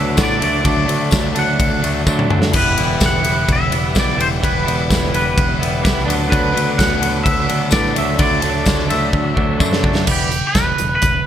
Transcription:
Already playing: picked electric bass D2, distorted electric guitar D3 F#3 B3 D4, tonewheel organ B4 F#5 D6, clean electric guitar E5
0.16 picked electric bass A2, distorted electric guitar D3 F#3 B3 D4, kick, snare, ride, tambourine
0.23 clean electric guitar D5
0.31 snare
0.39 picked electric bass D2, distorted electric guitar D3 F#3 A3 D4, tonewheel organ D5 E6, ride
0.44 clean electric guitar D5
0.63 picked electric bass D2, distorted electric guitar D3 F#3 A3 D4, kick, ride
0.67 clean electric guitar D5
0.86 picked electric bass D2, distorted electric guitar D3 F#3 A3 D4, ride
1.11 picked electric bass D2, kick, snare, ride, tambourine
1.35 picked electric bass D2, distorted electric guitar F#3 A3 D4, clean electric guitar F#5, ride
1.60 picked electric bass D2, kick, ride
1.82 picked electric bass D2, distorted electric guitar F#3 A3 D4, ride
2.06 picked electric bass D2, distorted electric guitar D3 F#3 A3 D4, kick, tambourine
2.19 mid tom
2.30 distorted electric guitar F#3 A3 D4, mid tom
2.42 snare
2.53 picked electric bass E1, distorted electric guitar E3 G3 B3 E4, clean electric guitar B4, tonewheel organ B4 E6, kick, crash
2.57 tonewheel organ G4
2.78 picked electric bass E1, distorted electric guitar E3 G3 B3 E4, ride
3.00 picked electric bass E1, kick, snare, ride, tambourine
3.06 clean electric guitar F#5
3.23 distorted electric guitar G3 B3 E4, ride
3.49 picked electric bass E1, clean electric guitar E5, kick, ride
3.71 picked electric bass E1, distorted electric guitar G3 B3 E4, ride
3.94 picked electric bass B1, distorted electric guitar E3 G3 B3 E4, kick, snare, ride, tambourine
4.00 clean electric guitar D5
4.09 snare
4.17 picked electric bass E1, distorted electric guitar G3 B3 E4, clean electric guitar C5, ride
4.41 distorted electric guitar E3 G3 B3 E4, clean electric guitar B4, kick, ride
4.66 picked electric bass E1, distorted electric guitar E3 G3 B3 E4, ride
4.90 picked electric bass E1, kick, snare, ride, tambourine
5.04 snare
5.12 picked electric bass E1, distorted electric guitar G3 B3 E4, clean electric guitar B4, ride
5.37 picked electric bass E1, kick, ride
5.59 picked electric bass E1, distorted electric guitar G3 B3 E4, ride
5.82 picked electric bass C2, distorted electric guitar E3 G3 B3 E4, kick, tambourine
5.86 snare, ride
5.99 snare
6.06 picked electric bass D2, distorted electric guitar D3 F#3 B3 D4, tonewheel organ F#5 D6
6.10 ride
6.29 picked electric bass D2, distorted electric guitar D3 F#3 B3 D4, clean electric guitar B4, kick
6.33 ride
6.52 distorted electric guitar D3 F#3 B3 D4
6.56 picked electric bass D2, ride
6.78 picked electric bass D2, clean electric guitar F#5, kick, snare, ride, tambourine
6.99 distorted electric guitar F#3 B3 D4, ride
7.24 picked electric bass D2, clean electric guitar E5, kick, ride
7.46 picked electric bass D2, distorted electric guitar F#3 B3 D4, ride
7.71 picked electric bass A2, distorted electric guitar D3 F#3 B3 D4, clean electric guitar D5, kick, snare, ride, tambourine
7.86 snare
7.93 picked electric bass D2, distorted electric guitar D3 F#3 A3 D4, tonewheel organ D5 E6, ride
7.98 clean electric guitar E5
8.18 picked electric bass D2, distorted electric guitar D3 F#3 A3 D4, clean electric guitar D5, kick, ride
8.41 picked electric bass D2, distorted electric guitar D3 F#3 A3 D4, ride
8.66 picked electric bass D2, kick, snare, ride, tambourine
8.79 snare
8.88 picked electric bass D2, distorted electric guitar F#3 A3 D4, clean electric guitar E5, ride
9.13 picked electric bass D2, kick
9.34 picked electric bass D2, distorted electric guitar F#3 A3 D4, kick
9.58 picked electric bass F#2, distorted electric guitar D3 F#3 A3 D4, kick, tambourine
9.73 snare
9.82 distorted electric guitar F#3 A3 D4, kick
9.95 snare
10.06 picked electric bass E1, distorted electric guitar E3 G3 B3, kick, crash
10.12 clean electric guitar G4
10.31 distorted electric guitar E3 G3, closed hi-hat
10.47 clean electric guitar B4
10.55 picked electric bass E1, distorted electric guitar E3 G3, kick, snare, closed hi-hat, tambourine
10.78 picked electric bass E1, distorted electric guitar E3 G3, closed hi-hat
10.95 clean electric guitar B4
11.02 picked electric bass E1, distorted electric guitar E3 G3, kick, closed hi-hat

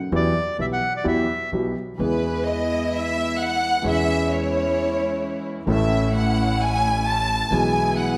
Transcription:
0.12 upright bass E2, grand piano E2 E3 F#3 B3 E4 G4, bandoneon D5
0.59 upright bass B1, grand piano B1 B2 F#3 B3 E4 G4, bandoneon E5
0.73 bandoneon F#5
0.97 bandoneon D5
1.04 grand piano E2 E3 F#3 B3 E4 G4, upright bass E2, bandoneon E5
1.52 upright bass B1, grand piano B1 B2 F#3 B3 E4 G4
1.99 upright bass E2, grand piano E2 E3 G#3 B3 G#4, string section G#3 B3 E4, violin section B4
2.46 violin section D#5
2.93 violin section E5
3.40 violin section F#5
3.82 grand piano E2 E3 G#3 C#4 G#4, upright bass E2, string section G#3 C#4 E4
3.87 violin section E5
4.31 violin section C#5
5.66 upright bass A1, grand piano A1 A2 E3 A3 C#4, string section A3 C#4 E4, violin section E5
5.70 grand piano A4
6.15 violin section F#5
6.61 violin section G#5
7.07 violin section A5
7.50 upright bass B1, grand piano B1 B2 E3 G#3 B3 G#4, string section G#3 B3 E4, violin section G#5
7.99 violin section F#5

